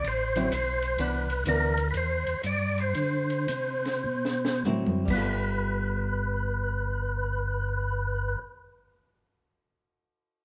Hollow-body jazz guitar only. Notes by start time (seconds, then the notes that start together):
0.36 D3 F#3 C4 E4
0.99 E3 B3 D4
1.47 E3 B3 D4
4.66 D3 F#3 C4 E4
5.05 G3
5.10 B3 F4
5.18 A4